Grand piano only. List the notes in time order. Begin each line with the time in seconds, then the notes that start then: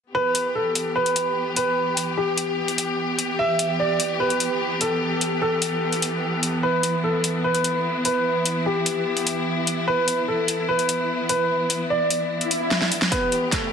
0.15 B4
0.55 A4
0.96 B4
1.56 B4
2.17 G4
3.39 E5
3.79 D5
4.20 B4
4.81 A4
5.42 A4
6.63 B4
7.04 A4
7.44 B4
8.05 B4
8.66 G4
9.88 B4
10.28 A4
10.69 B4
11.29 B4
11.90 D5
13.12 B3 B4
13.52 A3 A4